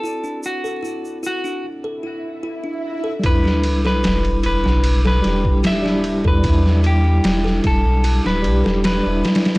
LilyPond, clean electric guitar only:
\new Staff \with { instrumentName = "Clean electric guitar" } { \time 4/4 \key e \minor \tempo 4 = 75 a'8 fis'4 fis'8 r2 | b'8. b'8. b'8. b'8. e''8. b'16~ | b'8 g'4 a'8. b'8. b'4 | }